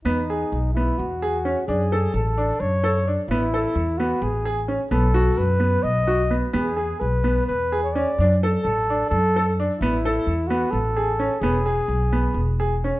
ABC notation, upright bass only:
X:1
M:7/8
L:1/8
Q:1/4=129
K:E
V:1 name="Upright bass" clef=bass
E,,2 B,,,2 E,,3 | F,,2 A,,,2 F,,3 | A,,,2 E,,2 A,,,3 | B,,,2 F,,2 B,,,3 |
E,,2 B,,,2 E,,3 | F,,2 A,,,2 F,,3 | A,,,2 E,,2 A,,,3 | E,,,2 B,,,2 E,,,3 |]